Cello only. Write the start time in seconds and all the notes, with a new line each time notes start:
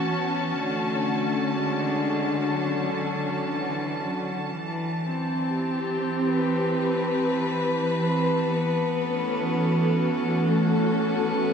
Already playing: A3
0.09 B3
0.58 A3
1.56 G#3
2.53 F#3
3.54 E3
4.04 F#3
4.44 F#3
4.51 E3
8.01 C4
8.51 B3
10.50 A3
11.01 B3